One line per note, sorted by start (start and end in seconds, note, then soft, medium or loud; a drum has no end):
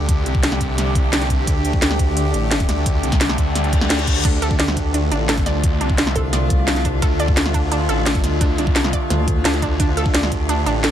0.00 10.91 D3 medium
0.00 10.91 A3 medium
0.00 10.91 D4 medium
0.00 4.23 G4 loud
0.09 0.25 D2 loud
0.09 kick loud
0.09 closed hi-hat loud
0.26 0.59 C2 loud
0.26 closed hi-hat medium
0.35 kick loud
0.43 snare loud
0.43 closed hi-hat medium
0.52 snare medium
0.61 1.46 C2 loud
0.61 kick medium
0.61 closed hi-hat medium
0.78 snare soft
0.78 closed hi-hat medium
0.95 kick loud
0.95 closed hi-hat medium
1.13 snare loud
1.13 closed hi-hat medium
1.21 snare soft
1.21 closed hi-hat soft
1.30 kick medium
1.30 closed hi-hat medium
1.47 2.33 D2 loud
1.47 kick loud
1.47 closed hi-hat loud
1.65 closed hi-hat medium
1.73 kick loud
1.82 snare loud
1.82 closed hi-hat loud
1.91 snare medium
1.99 kick medium
1.99 closed hi-hat medium
2.17 closed hi-hat medium
2.34 2.67 A1 medium
2.34 closed hi-hat medium
2.51 snare loud
2.51 closed hi-hat loud
2.60 kick loud
2.60 closed hi-hat soft
2.69 2.85 D2 loud
2.69 snare soft
2.69 closed hi-hat medium
2.86 3.02 D2 medium
2.86 kick loud
2.86 closed hi-hat loud
3.03 3.37 C2 loud
3.03 closed hi-hat medium
3.12 kick loud
3.12 snare medium
3.12 closed hi-hat soft
3.21 snare loud
3.21 closed hi-hat loud
3.29 snare medium
3.38 3.89 D2 loud
3.38 kick medium
3.38 closed hi-hat medium
3.55 snare soft
3.55 closed hi-hat loud
3.55 reverse cymbal medium
3.64 closed hi-hat soft
3.73 kick loud
3.73 closed hi-hat medium
3.81 snare medium
3.90 4.23 D2 medium
3.90 snare loud
3.90 closed hi-hat loud
3.99 snare soft
3.99 closed hi-hat soft
4.07 kick medium
4.07 closed hi-hat medium
4.25 5.10 D2 loud
4.25 4.32 D4 medium
4.25 9.77 F4 medium
4.25 kick loud
4.25 closed hi-hat loud
4.25 crash medium
4.42 4.59 A4 medium
4.42 closed hi-hat medium
4.51 kick loud
4.59 4.76 D5 medium
4.59 snare loud
4.59 closed hi-hat medium
4.68 snare medium
4.77 kick medium
4.77 closed hi-hat medium
4.94 5.06 D4 medium
4.94 closed hi-hat medium
5.11 5.45 A1 loud
5.11 5.19 D4 medium
5.11 closed hi-hat medium
5.29 5.45 A4 medium
5.29 snare loud
5.29 closed hi-hat loud
5.38 kick loud
5.38 closed hi-hat soft
5.46 5.62 D2 loud
5.46 5.63 D5 medium
5.46 snare soft
5.46 closed hi-hat medium
5.63 5.79 D2 loud
5.63 kick loud
5.63 closed hi-hat loud
5.81 6.14 C2 loud
5.81 5.93 D4 medium
5.81 closed hi-hat medium
5.90 kick loud
5.98 6.05 D4 medium
5.98 snare loud
5.98 closed hi-hat medium
6.07 snare medium
6.16 7.01 C2 loud
6.16 6.32 A4 medium
6.16 kick medium
6.16 closed hi-hat medium
6.33 6.49 D5 medium
6.33 snare soft
6.33 closed hi-hat medium
6.50 kick loud
6.50 closed hi-hat medium
6.68 6.79 D4 medium
6.68 snare loud
6.68 closed hi-hat medium
6.76 snare soft
6.76 closed hi-hat soft
6.85 6.92 D4 medium
6.85 kick medium
6.85 closed hi-hat medium
7.02 7.88 D2 medium
7.02 7.19 A4 medium
7.02 kick loud
7.02 closed hi-hat loud
7.20 7.36 D5 medium
7.20 closed hi-hat medium
7.28 kick loud
7.37 snare loud
7.37 closed hi-hat medium
7.46 snare medium
7.54 7.66 D4 medium
7.54 kick medium
7.54 closed hi-hat medium
7.72 7.79 D4 medium
7.72 closed hi-hat medium
7.89 8.22 A1 loud
7.89 8.05 A4 medium
7.89 closed hi-hat medium
8.06 8.23 D5 medium
8.06 snare loud
8.06 closed hi-hat medium
8.15 kick loud
8.15 closed hi-hat soft
8.24 8.40 D2 loud
8.24 snare soft
8.24 closed hi-hat medium
8.41 8.57 D2 loud
8.41 8.53 D4 medium
8.41 kick loud
8.41 closed hi-hat loud
8.58 8.92 C2 loud
8.58 8.65 D4 medium
8.58 closed hi-hat medium
8.67 kick loud
8.76 8.92 A4 medium
8.76 snare loud
8.76 closed hi-hat medium
8.84 snare medium
8.93 9.10 D5 medium
8.93 kick medium
8.93 closed hi-hat medium
9.10 9.44 D2 loud
9.10 snare soft
9.10 closed hi-hat medium
9.28 kick loud
9.28 closed hi-hat medium
9.45 9.78 D2 loud
9.45 9.61 D4 medium
9.45 snare loud
9.45 closed hi-hat medium
9.54 snare soft
9.54 closed hi-hat soft
9.62 9.79 D4 medium
9.62 kick medium
9.62 closed hi-hat medium
9.80 10.65 D2 loud
9.80 9.87 D4 medium
9.80 10.91 G4 loud
9.80 kick loud
9.80 closed hi-hat medium
9.97 10.14 A4 medium
9.97 closed hi-hat medium
10.06 kick loud
10.14 10.31 D5 medium
10.14 snare loud
10.14 closed hi-hat medium
10.23 snare medium
10.32 kick medium
10.32 closed hi-hat medium
10.49 10.61 D4 medium
10.49 closed hi-hat medium
10.66 10.91 A1 loud
10.66 10.74 D4 medium
10.66 closed hi-hat medium
10.84 10.91 A4 medium
10.84 snare loud
10.84 closed hi-hat medium